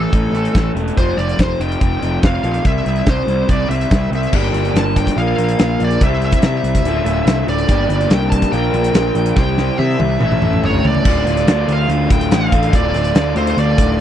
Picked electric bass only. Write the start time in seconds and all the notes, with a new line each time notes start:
0.13 A1
0.32 A1
0.55 A1
0.75 E1
0.97 F1
1.18 F1
1.39 F1
1.60 F1
1.81 F1
2.03 F1
2.23 F1
2.44 A#1
2.65 C2
2.86 C2
3.07 C2
3.27 C2
3.49 C2
3.69 C2
3.91 C2
4.11 C2
4.33 G1
4.54 G1
4.74 G1
5.16 A#1
5.38 A#1
5.60 A#1
5.80 A#1
6.01 C2
6.42 C3
6.63 C2
6.83 D1
7.04 D1
7.26 C2
7.47 D1
7.69 G1
7.89 G1
8.11 C2
8.53 A#1
8.73 A#1
8.93 A#1
9.15 A#1
9.37 C2
9.79 C3
10.00 C2
10.22 A1
10.42 A1
10.63 G1
10.85 C#2
11.05 D1
11.26 D1
11.47 D2
11.68 D2
11.89 D2
12.11 D1
12.31 A1
12.52 A1
12.73 D1
12.94 D1
13.15 D2
13.36 D2
13.57 D2
13.78 D1